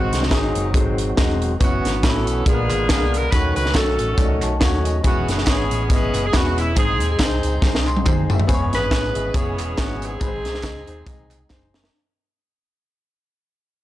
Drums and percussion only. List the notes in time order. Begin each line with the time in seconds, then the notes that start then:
0.13 snare, closed hi-hat
0.23 snare
0.31 kick, snare, closed hi-hat
0.55 closed hi-hat
0.74 kick, closed hi-hat
0.98 closed hi-hat
1.17 kick, snare, closed hi-hat
1.42 closed hi-hat
1.61 kick, closed hi-hat, tambourine
1.85 snare, closed hi-hat, tambourine
2.03 kick, snare, clap, closed hi-hat, tambourine
2.27 closed hi-hat, tambourine
2.46 kick, closed hi-hat, tambourine
2.70 clap, closed hi-hat, tambourine
2.89 kick, snare, clap, closed hi-hat, tambourine
3.14 closed hi-hat, tambourine
3.32 kick, closed hi-hat, tambourine
3.56 closed hi-hat, tambourine
3.66 snare
3.75 kick, snare, clap, closed hi-hat, tambourine
3.99 closed hi-hat, tambourine
4.18 kick, closed hi-hat, tambourine
4.42 clap, closed hi-hat, tambourine
4.61 kick, snare, clap, closed hi-hat, tambourine
4.85 closed hi-hat, tambourine
5.04 kick, closed hi-hat, tambourine
5.28 snare, closed hi-hat, tambourine
5.38 snare
5.47 kick, snare, clap, closed hi-hat, tambourine
5.71 closed hi-hat, tambourine
5.90 kick, closed hi-hat, tambourine
6.14 clap, closed hi-hat, tambourine
6.33 kick, snare, clap, closed hi-hat, tambourine
6.58 closed hi-hat, tambourine
6.76 kick, closed hi-hat, tambourine
7.00 closed hi-hat, tambourine
7.19 kick, snare, clap, closed hi-hat, tambourine
7.43 closed hi-hat, tambourine
7.62 kick, snare, tambourine
7.75 snare
7.87 clap, tambourine
7.97 high tom
8.06 kick, clap, mid tom, tambourine
8.30 floor tom, tambourine
8.39 floor tom
8.49 kick, closed hi-hat, tambourine
8.73 snare, closed hi-hat, tambourine
8.91 kick, snare, clap, closed hi-hat, tambourine
9.15 closed hi-hat, tambourine
9.34 kick, closed hi-hat, tambourine
9.59 clap, closed hi-hat, tambourine
9.78 kick, snare, clap, closed hi-hat, tambourine
10.02 closed hi-hat, tambourine
10.21 kick, closed hi-hat, tambourine
10.45 snare, closed hi-hat, tambourine
10.55 snare
10.63 kick, snare, clap, closed hi-hat, tambourine
10.87 closed hi-hat, tambourine
11.07 kick, closed hi-hat, tambourine
11.31 clap, closed hi-hat, tambourine
11.50 kick, snare, clap, tambourine
11.74 snare, tambourine
11.84 snare